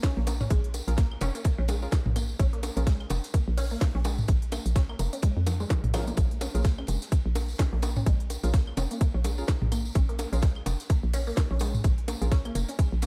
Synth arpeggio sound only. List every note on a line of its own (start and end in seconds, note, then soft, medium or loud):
0.03 0.10 C#4 loud
0.17 0.20 A#3 medium
0.27 0.30 A#3 medium
0.41 0.44 C#4 medium
0.51 0.53 G#3 medium
0.98 1.00 A#3 medium
1.21 1.28 C#4 loud
1.35 1.38 A#3 medium
1.45 1.48 A#3 medium
1.58 1.62 C#4 medium
1.69 1.71 G#3 medium
2.16 2.19 A#3 medium
2.40 2.46 C#4 loud
2.53 2.56 A#3 medium
2.63 2.66 A#3 medium
2.77 2.80 C#4 medium
2.87 2.89 G#3 medium
3.34 3.37 A#3 medium
3.58 3.64 C#4 loud
3.71 3.75 A#3 medium
3.81 3.84 A#3 medium
3.95 3.98 C#4 medium
4.05 4.08 G#3 medium
4.52 4.55 A#3 medium
4.76 4.82 C#4 loud
4.89 4.93 A#3 medium
4.99 5.02 A#3 medium
5.13 5.16 C#4 medium
5.23 5.26 G#3 medium
5.47 5.51 F3 medium
5.60 5.63 G#3 loud
5.70 5.75 F3 medium
5.94 5.97 F3 medium
6.07 6.09 A#3 loud
6.18 6.20 A#3 medium
6.41 6.48 C#4 loud
6.55 6.58 A#3 medium
6.65 6.67 A#3 medium
6.78 6.82 C#4 medium
6.88 6.91 G#3 medium
7.35 7.38 A#3 medium
7.59 7.66 C#4 loud
7.73 7.76 A#3 medium
7.83 7.86 A#3 medium
7.97 8.00 C#4 medium
8.07 8.09 G#3 medium
8.54 8.56 A#3 medium
8.77 8.84 C#4 loud
8.91 8.94 A#3 medium
9.01 9.04 A#3 medium
9.15 9.18 C#4 medium
9.25 9.27 G#3 medium
9.72 9.75 A#3 medium
9.95 10.02 C#4 loud
10.09 10.12 A#3 medium
10.19 10.22 A#3 medium
10.33 10.36 C#4 medium
10.43 10.45 G#3 medium
10.90 10.93 A#3 medium
11.14 11.20 C#4 loud
11.27 11.30 A#3 medium
11.37 11.40 A#3 medium
11.51 11.54 C#4 medium
11.61 11.63 G#3 medium
12.08 12.11 A#3 medium
12.31 12.38 C#4 loud
12.45 12.48 A#3 medium
12.55 12.58 A#3 medium
12.69 12.72 C#4 medium
12.79 12.81 G#3 medium
13.02 13.06 A#3 medium